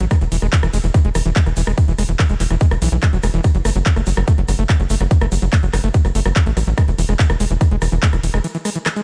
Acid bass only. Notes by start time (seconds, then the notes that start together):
0.01 F#3
0.11 G#3
0.21 E3
0.32 E3
0.42 G#3
0.53 E3
0.63 E3
0.73 G#3
0.84 E3
0.94 E3
1.05 G#3
1.15 E3
1.26 E3
1.36 G#3
1.46 E3
1.57 E3
1.67 G#3
1.78 E3
1.88 E3
1.99 G#3
2.09 E3
2.19 E3
2.30 G#3
2.40 E3
2.51 E3
2.61 G#3
2.71 E3
2.82 E3
2.92 E3
3.03 G#3
3.13 F#3
3.23 G#3
3.34 E3
3.44 F#3
3.55 F#3
3.65 A3
3.76 F#3
3.86 F#3
3.96 A3
4.07 F#3
4.17 F#3
4.28 A3
4.38 F#3
4.49 F#3
4.59 A3
4.69 F#3
4.80 F#3
4.90 A3
5.01 F#3
5.11 F#3
5.21 A3
5.32 F#3
5.42 F#3
5.53 A3
5.63 F#3
5.73 F#3
5.84 A3
5.94 F#3
6.05 F#3
6.15 A3
6.26 F#3
6.36 F#3
6.46 A3
6.57 F#3
6.67 F#3
6.78 G#3
6.88 E3
6.99 E3
7.09 G#3
7.19 E3
7.30 E3
7.40 G#3
7.51 E3
7.61 E3
7.71 G#3
7.82 E3
7.92 E3
8.03 G#3
8.13 E3
8.24 E3
8.34 G#3
8.44 E3
8.55 E3
8.65 G#3
8.76 E3
8.86 E3
8.96 G#3